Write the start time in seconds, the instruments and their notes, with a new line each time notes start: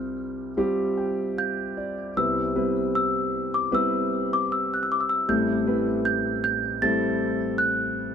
Already playing: grand piano C2 C3 G3 C4 F4 C5, celesta F6
0.57 grand piano G3 C4 F4 G4
0.97 grand piano G5
1.37 grand piano F5, celesta G6
1.77 grand piano D5
2.17 grand piano C2 C3 G3 B3 C4 E4 B4, celesta E6
2.55 grand piano G3 B3 C4 E4 B4
2.95 celesta E6
3.54 celesta D6
3.71 grand piano G3 B3 C4 E4 B4, celesta E6
4.33 celesta D6
4.52 celesta E6
4.74 celesta F#6
4.83 celesta E6
4.92 celesta D6
5.00 celesta E6
5.09 celesta E6
5.28 grand piano A1 A2 G3 A3 C4 E4 A4, celesta G6
5.66 grand piano G3 A3 C4 E4 B4
6.05 celesta G6
6.44 celesta G6
6.82 grand piano G3 A3 C4 E4 A4, celesta A6
7.58 celesta F#6